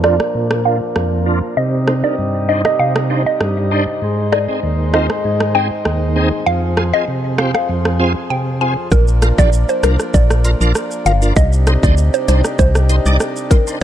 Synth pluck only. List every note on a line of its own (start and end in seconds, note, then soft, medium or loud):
0.04 0.17 D5 medium
0.65 0.79 F5 medium
1.57 1.82 D#5 loud
2.04 2.16 D5 medium
2.49 2.62 D#5 medium
2.65 2.77 D#5 medium
2.79 2.93 F5 medium
3.26 3.38 D#5 medium
4.32 4.46 D5 medium
4.94 5.07 D#5 medium
5.55 5.68 G5 medium
6.46 6.72 F5 loud
6.94 7.05 D#5 medium
7.38 7.52 F5 medium
7.55 7.67 F5 medium
8.30 8.44 G5 medium
8.61 8.74 G#5 medium
8.92 9.05 A#4 loud
9.39 9.50 D5 medium
9.69 9.81 C5 medium
9.84 9.97 A#4 medium
10.14 10.58 D5 loud
11.06 11.19 F5 medium
11.36 11.50 D#5 loud
11.83 11.95 D5 medium
12.14 12.26 C5 medium
12.28 12.42 C5 medium
12.59 13.03 C5 medium
13.51 13.64 A#4 medium